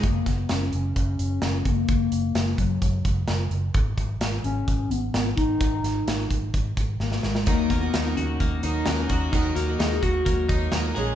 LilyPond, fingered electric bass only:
\new Staff \with { instrumentName = "Fingered electric bass" } { \clef bass \time 4/4 \key fis \major \tempo 4 = 129 fis,,8 fis,,8 fis,,8 fis,,8 fis,,8 fis,,8 fis,,8 fis,,8 | fis,,8 fis,,8 fis,,8 fis,,8 fis,,8 fis,,8 fis,,8 fis,,8 | gis,,8 gis,,8 gis,,8 gis,,8 gis,,8 gis,,8 gis,,8 gis,,8 | gis,,8 gis,,8 gis,,8 gis,,8 gis,,8 gis,,8 gis,,8 gis,,8 |
dis,8 dis,8 dis,8 dis,8 dis,8 dis,8 dis,8 dis,8 | dis,8 dis,8 dis,8 dis,8 dis,8 dis,8 dis,8 ais,,8 | }